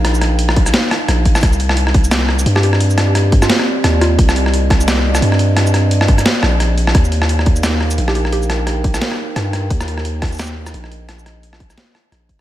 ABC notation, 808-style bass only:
X:1
M:4/4
L:1/8
Q:"Swing 16ths" 1/4=174
K:Eb
V:1 name="808-style bass" clef=bass
B,,,4 z2 B,,,2 | C,,6 G,,2- | G,,4 z2 E,,2 | C,,6 G,,2- |
G,,4 z B,,,3 | E,,6 B,,,2- | B,,,4 z2 G,,2 | E,,6 B,,,2- |
B,,,4 z2 B,,,2 |]